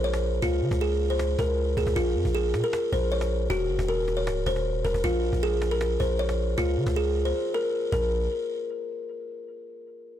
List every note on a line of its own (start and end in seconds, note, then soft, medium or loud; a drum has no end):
0.00 0.40 A#1 loud
0.00 cajon slap soft
0.04 0.40 C#5 medium
0.13 cajon slap loud
0.28 cajon slap soft
0.33 cajon slap soft
0.38 cajon slap soft
0.42 0.63 C#2 loud
0.42 0.79 F4 loud
0.42 cajon bass loud
0.62 0.71 C#3 loud
0.62 cajon slap soft
0.71 1.36 C#2 loud
0.71 cajon bass medium
0.71 cajon slap loud
0.81 1.08 G#4 medium
0.87 cajon slap soft
0.94 cajon slap soft
1.00 cajon slap soft
1.10 1.37 C5 medium
1.19 cajon slap loud
1.39 1.76 C#2 loud
1.39 1.75 A#4 medium
1.39 cajon bass medium
1.39 cajon slap medium
1.58 cajon slap soft
1.77 1.86 C#2 loud
1.77 1.95 G#4 medium
1.77 cajon bass medium
1.87 1.96 C#2 loud
1.87 cajon bass loud
1.96 2.17 A#1 loud
1.96 2.32 F4 loud
1.96 cajon bass loud
2.15 2.25 F2 loud
2.15 cajon slap soft
2.25 2.55 A#1 loud
2.25 cajon bass medium
2.35 2.62 G#4 medium
2.35 cajon slap soft
2.54 2.63 A#2 loud
2.54 cajon slap loud
2.60 2.91 A#4 medium
2.60 cajon slap soft
2.67 cajon slap soft
2.73 cajon slap loud
2.92 3.48 A#1 loud
2.92 3.10 C5 medium
2.92 cajon bass medium
3.12 3.48 C#5 medium
3.12 cajon slap soft
3.21 cajon slap loud
3.36 cajon slap soft
3.40 cajon slap soft
3.45 cajon slap soft
3.50 3.71 D#1 loud
3.50 3.86 F#4 loud
3.50 cajon bass loud
3.69 3.78 F#1 loud
3.69 cajon slap soft
3.79 4.29 D#1 loud
3.79 cajon bass medium
3.79 cajon slap loud
3.88 4.16 A#4 medium
3.88 cajon slap soft
4.08 cajon slap medium
4.13 cajon slap soft
4.17 4.44 C#5 medium
4.22 cajon slap soft
4.27 4.45 C#1 loud
4.27 cajon slap loud
4.46 4.83 D#1 loud
4.46 4.83 C5 medium
4.46 cajon bass medium
4.46 cajon slap medium
4.56 cajon slap medium
4.66 cajon slap soft
4.85 4.94 D#1 loud
4.85 5.02 A#4 medium
4.85 cajon bass medium
4.94 5.03 D#1 loud
4.94 cajon bass loud
5.04 5.32 A#1 loud
5.04 5.40 F4 loud
5.04 cajon bass loud
5.23 cajon slap soft
5.33 5.97 A#1 loud
5.33 cajon bass medium
5.43 5.70 G#4 loud
5.62 cajon slap medium
5.68 5.98 A#4 medium
5.68 cajon slap soft
5.74 cajon slap soft
5.81 cajon slap loud
6.00 6.56 A#1 loud
6.00 6.18 C5 medium
6.00 cajon bass medium
6.19 6.55 C#5 medium
6.19 cajon slap soft
6.29 cajon slap loud
6.39 cajon slap soft
6.43 cajon slap soft
6.48 cajon slap soft
6.53 cajon slap soft
6.58 6.79 C#2 loud
6.58 6.94 F4 loud
6.58 cajon bass loud
6.77 6.86 C#3 loud
6.77 cajon slap soft
6.87 7.33 C#2 loud
6.87 cajon bass medium
6.87 cajon slap loud
6.96 7.23 G#4 medium
6.96 cajon slap soft
7.03 cajon slap soft
7.09 cajon slap soft
7.16 cajon slap soft
7.25 7.52 C5 medium
7.54 7.90 A#4 medium
7.92 8.28 A#1 loud
7.92 8.10 A#4 medium
7.92 cajon bass loud